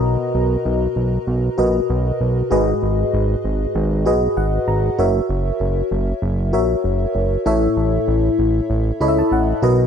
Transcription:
0.00 0.17 B1 loud
0.00 0.62 B2 medium
0.00 0.90 F#4 medium
0.00 0.90 A#4 medium
0.00 0.90 B4 medium
0.00 0.91 D#5 loud
0.00 2.54 A#5 medium
0.35 0.57 B1 loud
0.65 0.88 B1 loud
0.96 1.19 B1 loud
1.27 1.50 B1 loud
1.58 1.81 A#1 medium
1.58 2.46 F#4 medium
1.58 2.46 A#4 medium
1.58 2.47 B4 medium
1.58 2.47 D#5 medium
1.90 2.12 B1 loud
2.21 2.43 B1 medium
2.51 2.74 G#1 loud
2.51 3.40 G#2 medium
2.51 3.68 F#4 medium
2.51 3.69 G#4 medium
2.51 3.69 B4 medium
2.51 3.69 D#5 medium
2.83 3.05 G#1 medium
3.14 3.36 G#1 loud
3.44 3.67 G#1 medium
3.75 4.08 G#1 loud
4.06 4.28 B1 medium
4.06 4.94 F#4 medium
4.06 4.94 G#4 medium
4.06 4.94 B4 medium
4.06 4.94 D#5 medium
4.37 4.59 G#1 medium
4.37 4.66 F#5 medium
4.68 4.90 G#1 medium
4.68 4.97 A#5 medium
4.98 5.21 F#1 loud
4.98 6.16 F#4 medium
4.98 6.16 A#4 medium
4.98 6.16 C#5 medium
4.98 6.17 E5 medium
5.29 5.52 F#1 loud
5.60 5.83 F#1 loud
5.91 6.14 F#1 loud
6.22 6.55 F#1 loud
6.53 6.76 A#1 medium
6.53 7.41 F#4 medium
6.53 7.41 A#4 medium
6.53 7.42 C#5 medium
6.53 7.42 E5 medium
6.84 7.06 F#1 medium
7.15 7.37 F#1 medium
7.46 7.68 A1 loud
7.46 8.35 A2 medium
7.46 8.63 E4 medium
7.46 8.64 A4 medium
7.46 8.64 C#5 medium
7.46 8.64 E5 medium
7.77 7.99 A1 loud
8.08 8.30 A1 loud
8.39 8.61 A1 loud
8.70 8.92 A1 loud
9.01 9.23 C#2 medium
9.01 9.63 E4 medium
9.01 9.63 A4 medium
9.01 9.63 C#5 medium
9.01 9.08 D#5 medium
9.01 9.17 B5 medium
9.08 9.66 E5 medium
9.19 9.31 A5 medium
9.31 9.54 A1 medium
9.31 9.87 F#5 medium
9.62 9.87 B1 loud
9.62 9.87 B2 medium
9.62 9.87 F#4 medium
9.62 9.87 A#4 medium
9.62 9.87 B4 medium
9.62 9.87 D#5 loud

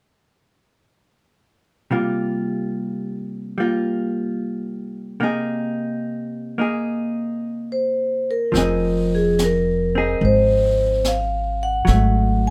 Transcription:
1.91 5.19 C3 soft
1.91 3.56 G3 soft
1.91 3.59 A#3 soft
1.91 3.59 F4 soft
3.58 5.22 G3 soft
3.58 5.19 A#3 soft
3.58 5.22 F4 soft
5.20 8.54 C3 soft
5.20 6.57 A#3 soft
5.20 6.58 D#4 soft
5.20 6.60 G#4 soft
6.58 8.53 A#3 soft
6.58 8.54 D#4 soft
6.58 8.55 G#4 soft
7.72 8.29 C5 medium
8.31 9.15 A#4 medium
8.52 10.17 F1 medium
8.52 11.84 F3 soft
8.52 9.94 C4 soft
8.52 brush sweep soft
8.52 snare soft
8.57 9.96 D#4 soft
8.57 9.97 G#4 soft
9.15 9.41 G#4 medium
9.39 snare soft
9.39 hi-hat pedal soft
9.44 10.21 A#4 medium
9.95 11.88 C4 soft
9.95 11.89 D#4 soft
9.95 11.89 G#4 soft
10.21 11.83 G#1 medium
10.21 11.09 C5 medium
10.21 brush sweep soft
11.04 11.63 F5 medium
11.04 snare soft
11.04 hi-hat pedal soft
11.63 12.47 F#5 medium
11.85 12.50 G#1 medium
11.85 12.50 F#3 soft
11.85 12.50 A3 soft
11.85 brush sweep soft
11.85 snare soft

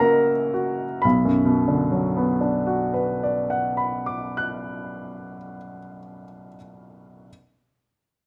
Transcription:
0.00 1.06 C#3 soft
0.00 1.07 A#3 soft
0.00 0.54 F#4 soft
0.00 1.00 A#4 soft
0.00 1.07 C#5 medium
0.00 1.07 E5 medium
0.00 1.04 A#5 medium
0.00 1.06 C#6 medium
0.00 1.07 E6 medium
0.54 1.05 F#4 soft
1.02 5.36 B1 soft
1.02 3.76 B5 soft
1.25 5.56 F#2 soft
1.45 5.76 B2 soft
1.68 5.99 D3 soft
1.92 6.23 F#3 soft
2.17 6.48 B3 soft
2.41 6.56 D4 soft
2.67 6.56 F#4 soft
2.94 6.56 B4 soft
3.23 6.57 D5 soft
3.50 6.56 F#5 soft
3.77 6.55 B5 soft
4.06 6.55 D6 soft
4.37 6.56 F#6 soft

